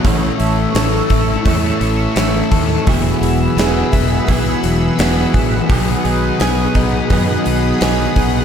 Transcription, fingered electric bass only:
\new Staff \with { instrumentName = "Fingered electric bass" } { \clef bass \time 4/4 \key a \lydian \tempo 4 = 85 a,,8 a,,8 a,,8 a,,8 e,8 a,,8 a,,8 dis,8 | e,,8 e,,8 e,,8 e,,8 b,,8 e,,8 e,,8 a,,8 | b,,8 b,,8 b,,8 b,,8 fis,8 b,,8 b,,8 b,,8 | }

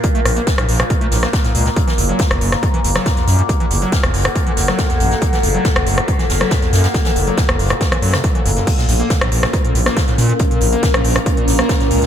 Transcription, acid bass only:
\new Staff \with { instrumentName = "Acid bass" } { \clef bass \time 4/4 \key ges \lydian \tempo 4 = 139 bes,16 a16 a,16 bes16 r16 a,16 bes,16 bes,16 bes,16 a16 a,16 bes16 r16 a,16 bes,16 bes,16 | ges,16 e16 e,16 ges16 ges,16 e,16 ges,16 ges,16 ges,16 e16 e,16 ges16 ges,16 e,16 ges,16 ges,16 | ges,16 e16 e,16 ges16 ges,16 e,16 ges,16 ges,16 ges,16 e16 e,16 ges16 ges,16 e,16 ges,16 ges,16 | ges,16 e16 e,16 ges16 ges,16 e,16 ges,16 ges,16 ges,16 e16 e,16 ges16 ges,16 e,16 ges,16 ges,16 |
ges,16 e16 e,16 ges16 ges,16 e,16 ges,16 ges,16 ges,16 e16 ges16 ces16 ges,16 e16 ges,16 ges,16 | bes,16 bes,16 a,16 bes16 bes,16 a,16 bes,16 bes,16 bes,16 bes,16 a,16 bes16 bes,16 a,16 bes,16 bes,16 | bes,16 bes,16 a,16 bes16 bes,16 a,16 bes,16 bes,16 bes,16 bes,16 a,16 bes16 bes,16 a,16 bes,16 bes,16 | }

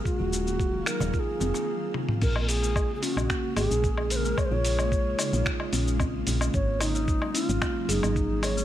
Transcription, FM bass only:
\new Staff \with { instrumentName = "FM bass" } { \clef bass \time 4/4 \key bes \minor \tempo 4 = 111 r16 ees,,4~ ees,,16 r16 ees,,16 r8 f,,16 r4 r16 | bes,,4~ bes,,16 r8 bes,,16 r8 aes,,16 bes,,4~ bes,,16 | r16 bes,,4~ bes,,16 r16 bes,,16 r8 bes,,4 bes,,8 | aes,,4~ aes,,16 r8 aes,,16 r8 ges,,16 aes,,4~ aes,,16 | }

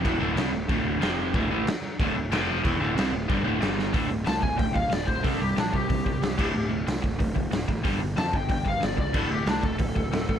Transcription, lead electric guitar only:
\new Staff \with { instrumentName = "Lead electric guitar" } { \time 4/4 \key d \minor \tempo 4 = 184 r1 | r1 | r1 | r4 a''8 gis''8 g''8 f''8 d''8 c''8 |
a'8 g'8 d'8 g'2~ g'8~ | g'8 r2. r8 | r4 a''8 g''8 g''8 f''8 d''8 d''8 | a'8 g'8 d'8 a'2~ a'8 | }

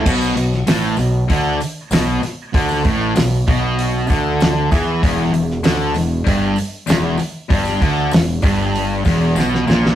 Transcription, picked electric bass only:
\new Staff \with { instrumentName = "Picked electric bass" } { \clef bass \time 4/4 \key a \lydian \tempo 4 = 97 b,,8 b,,8 a,,8 b,,8 d,8 r8 b,,8 r8 | d,8 a,,8 b,,8 b,,4 d,4 e,8 | e,,8 e,,8 d,8 e,,8 g,,8 r8 e,,8 r8 | g,,8 d,8 e,,8 g,,4 e,,8 b,,8 ais,,8 | }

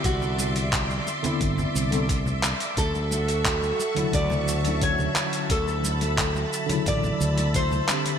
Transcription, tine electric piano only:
\new Staff \with { instrumentName = "Tine electric piano" } { \time 4/4 \key d \mixolydian \tempo 4 = 88 <d b c' e'>4.~ <d b c' e'>16 <d b c' e'>4 <d b c' a'>16 r4 | r4. r16 <cis d fis e'>4 <d fis cis' e'>4~ <d fis cis' e'>16~ | <d fis cis' e'>4.~ <d fis cis' e'>16 <cis d fis e'>4.~ <cis d fis e'>16 <d c' d' g'>8 | }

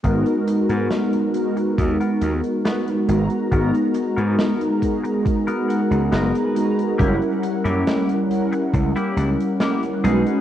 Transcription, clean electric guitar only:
\new Staff \with { instrumentName = "Clean electric guitar" } { \time 4/4 \key gis \minor \tempo 4 = 69 << { r1 | r2 r8 fis''8 b'4 | r1 | } \\ { <b fis' ais'>16 r8 <b fis' ais'>8 r4 <b fis' ais'>16 r8 <b fis' b'>16 r8. | <b fis' ais'>16 r8 <b fis' ais'>8 r4 <b fis' ais'>16 r8 <b fis' ais'>16 r8. | <ais e' g'>16 r8 <ais e' g'>8 r4 <ais e' g'>16 r8 <ais e' g'>16 r16 <cis' dis' gis'>8 | } >> }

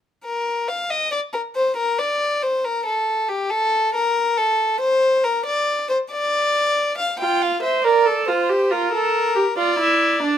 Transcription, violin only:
\new Staff \with { instrumentName = "Violin" } { \time 4/4 \key f \mixolydian \tempo 4 = 69 r16 bes'8 f''16 ees''16 d''16 bes'16 c''16 bes'16 d''8 c''16 bes'16 a'8 g'16 | a'8 bes'8 a'8 c''8 bes'16 d''8 c''16 d''4 | f''16 g''16 f''16 e''16 d''8 c''8 bes'4 d''4 | }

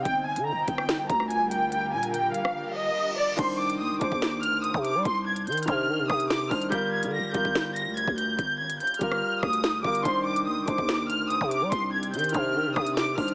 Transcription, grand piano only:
\new Staff \with { instrumentName = "Grand piano" } { \time 4/4 \key c \minor \tempo 4 = 144 r1 | r1 | <ees d' c''>4 r8 <ees d' c''>4. r4 | r4. <ees d' c''>4. r8 <ees d' c''>8 |
<g f' bes'>4 r8 <g f' bes'>4. r4 | r4. <g f' bes'>4. r8 <g f' bes'>8 | <ees d' c''>4 r8 <ees d' c''>4. r4 | r4. <ees d' c''>4. r8 <ees d' c''>8 | }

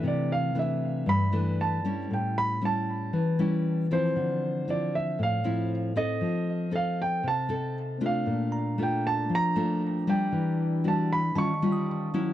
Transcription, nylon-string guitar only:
\new Staff \with { instrumentName = "Nylon-string guitar" } { \time 4/4 \key a \minor \tempo 4 = 117 << { <e a d'>4 <e a d'>4. <e a d'>4 <g cis' e'>8~ | <g cis' e'>4 <g cis' e'>4. <g cis' e'>4 <f c' e'>8~ | <f c' e'>4 <f c' e'>4. <f c' e'>4 <c' dis' a'>8~ | <c' dis' a'>4 <c' ees' a'>4. <c' ees' a'>4 <a d' f'>8~ |
<a d' f'>4 <a d' f'>4 r8 <a d' f'>4 <g d'>8~ | <g d'>4 <g d' fis'>8 r8 <g cis' eis'>8 <g cis' eis'>4 <fis cis' e'>8 | } \\ { c2 g,2 | a,2 e2 | d2 a,2 | f2 c2 |
bes,2 f2 | e2 dis2 | } >> }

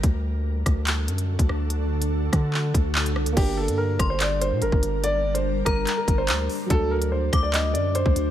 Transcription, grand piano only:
\new Staff \with { instrumentName = "Grand piano" } { \time 4/4 \key g \minor \tempo 4 = 144 r1 | r1 | g'8 a'8 bes'8. c''16 d''8 c''8 bes'4 | d''8. c''8. bes'8. bes'8 c''4~ c''16 |
a'8 bes'8 c''8. d''16 ees''8 d''8 c''4 | }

